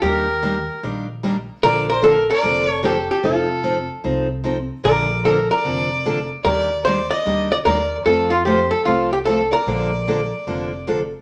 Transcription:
0.02 upright bass D#2, steel-string acoustic guitar D#3 G3 A#3 D4 G4, hollow-body jazz guitar G4, fiddle A#4
0.43 steel-string acoustic guitar D#3 G3 A#3 D4 G4
0.83 upright bass A#1, steel-string acoustic guitar D#3 G3 A#3 D4 G4
1.23 steel-string acoustic guitar D#3 G3 A#3 D4 G4
1.63 upright bass A#1, steel-string acoustic guitar D3 F3 A#3 D4 A4, hollow-body jazz guitar A#4, fiddle D5
1.90 hollow-body jazz guitar A#4, fiddle C5
2.02 steel-string acoustic guitar D3 F3 A#3 D4 A4, hollow-body jazz guitar A4, fiddle A#4
2.30 hollow-body jazz guitar A#4, fiddle D5
2.43 upright bass F1, steel-string acoustic guitar D3 F3 A#3 D4 A4
2.68 hollow-body jazz guitar A4, fiddle C#5
2.83 steel-string acoustic guitar D3 F3 A#3 D4 A4, hollow-body jazz guitar G4, fiddle A4
3.11 hollow-body jazz guitar G4, fiddle A4
3.23 upright bass F1, steel-string acoustic guitar F3 C4 D#4 A4, hollow-body jazz guitar F4, fiddle A4
3.63 steel-string acoustic guitar F3 C4 D#4 A4
4.04 upright bass C2, steel-string acoustic guitar F3 C4 D#4 A4
4.44 steel-string acoustic guitar F3 C4 D#4 A4
4.84 upright bass A#1, steel-string acoustic guitar D3 F3 A#3 D4 A4, hollow-body jazz guitar A#4, fiddle D5
5.25 steel-string acoustic guitar D3 F3 A#3 D4 A4, hollow-body jazz guitar A4, fiddle A#4
5.51 hollow-body jazz guitar A#4, fiddle D5
5.64 upright bass F1, steel-string acoustic guitar D3 F3 A#3 D4 A4
6.05 steel-string acoustic guitar D3 F3 A#3 D4 A4
6.44 upright bass D#2, steel-string acoustic guitar D#3 G3 A#3 D4 G4, hollow-body jazz guitar A#4, fiddle D5
6.85 steel-string acoustic guitar D#3 G3 A#3 D4 G4, hollow-body jazz guitar C5, fiddle D5
7.11 hollow-body jazz guitar D5, fiddle D#5
7.26 upright bass D2, steel-string acoustic guitar D#3 G3 A#3 D4 G4
7.50 hollow-body jazz guitar D5, fiddle D#5
7.64 upright bass D#2, steel-string acoustic guitar D#3 G3 A#3 D4 G4, hollow-body jazz guitar A#4, fiddle D5
8.04 upright bass F2, steel-string acoustic guitar F3 A3 C4 F4 A4, fiddle A4, hollow-body jazz guitar A4
8.30 hollow-body jazz guitar F4, fiddle F4
8.45 steel-string acoustic guitar F3 A3 C4 F4 A4, hollow-body jazz guitar G4, fiddle C5
8.71 hollow-body jazz guitar A4, fiddle A4
8.85 upright bass C2, steel-string acoustic guitar F3 A3 C4 F4 A4, fiddle F4, hollow-body jazz guitar F4
9.10 fiddle G4, hollow-body jazz guitar G4
9.24 steel-string acoustic guitar F3 A3 C4 F4 A4, fiddle A4, hollow-body jazz guitar A4
9.51 hollow-body jazz guitar A#4, fiddle D5
9.66 upright bass A#1, steel-string acoustic guitar D3 F3 A#3 D4 A4
10.07 steel-string acoustic guitar D3 F3 A#3 D4 A4
10.47 upright bass F1, steel-string acoustic guitar D3 F3 A#3 D4 A4
10.87 steel-string acoustic guitar D3 F3 A#3 D4 A4

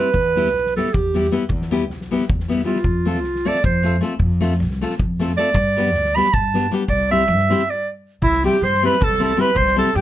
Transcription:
Already playing: clarinet B4
0.14 upright bass E2, kick
0.36 nylon-string guitar G3 B3 E4 G4, snare
0.46 snare
0.53 upright bass B1, snare
0.66 snare
0.77 nylon-string guitar G3 B3 E4 G4, clarinet A4, snare
0.86 snare
0.94 upright bass E2, clarinet G4, kick
1.14 nylon-string guitar G3 B3 E4 G4, snare
1.24 snare
1.31 nylon-string guitar G3 B3 E4 G4, snare
1.49 upright bass E2, kick
1.62 snare
1.71 nylon-string guitar G3 B3 E4 G4, snare
1.90 upright bass B1, snare
2.01 snare
2.11 nylon-string guitar G3 B3 E4 G4, snare
2.21 snare
2.29 upright bass E2, kick
2.40 snare
2.48 nylon-string guitar G3 B3 E4 G4, snare
2.58 snare
2.65 nylon-string guitar G3 B3 E4 G4, clarinet F4, snare
2.76 snare
2.84 upright bass F2, kick
3.05 nylon-string guitar A3 C4 F4 A4, snare
3.15 snare
3.24 upright bass C2, snare
3.35 snare
3.45 nylon-string guitar A3 C4 F4 A4, clarinet D5, snare
3.55 snare
3.64 upright bass F2, clarinet C5, kick
3.83 nylon-string guitar A3 C4 F4 A4, snare
4.01 nylon-string guitar A3 C4 F4 A4, snare
4.19 upright bass F2, kick
4.41 nylon-string guitar A3 C4 F4 A4, snare
4.51 snare
4.60 upright bass C2, snare
4.71 snare
4.81 nylon-string guitar A3 C4 F4 A4, snare
4.90 snare
5.00 upright bass F2, kick
5.19 nylon-string guitar A3 C4 F4 A4, snare
5.28 snare
5.37 nylon-string guitar A3 C4 F4 A4, clarinet D5
5.54 upright bass G2, kick
5.76 nylon-string guitar G3 B3 D4 G4, snare
5.86 snare
5.94 upright bass D2, snare
6.05 snare
6.15 nylon-string guitar G3 B3 D4 G4, clarinet B5, snare
6.25 snare
6.34 upright bass G2, clarinet A5, kick
6.54 nylon-string guitar G3 B3 D4 G4, snare
6.71 nylon-string guitar G3 B3 D4 G4, snare
6.88 upright bass C2, clarinet D5, kick
7.11 nylon-string guitar G3 C4 E4 G4, clarinet E5, snare
7.19 snare
7.28 upright bass G2, snare
7.39 snare
7.49 nylon-string guitar G3 C4 E4 G4, snare
7.58 snare
7.70 clarinet D5
8.22 upright bass C2, clarinet E4, accordion E5, kick
8.33 snare
8.44 nylon-string guitar G3 C4 E4 G4, clarinet G4, accordion G5, snare
8.53 snare
8.61 upright bass G2, clarinet C5, accordion C6, snare
8.74 snare
8.82 nylon-string guitar G3 C4 E4 G4, clarinet B4, accordion B5, snare
8.93 snare
9.01 upright bass C2, clarinet A4, accordion A5, kick
9.12 snare
9.19 nylon-string guitar G3 C4 E4 G4, accordion A5, snare
9.24 clarinet A4
9.30 snare
9.36 nylon-string guitar G3 C4 E4 G4, snare
9.41 clarinet B4, accordion B5
9.47 snare
9.55 upright bass C2, clarinet C5, accordion C6, kick
9.67 snare
9.76 nylon-string guitar G3 C4 E4 G4, clarinet A4, accordion A5
9.86 snare
9.94 upright bass G2, clarinet G4, accordion G5, snare

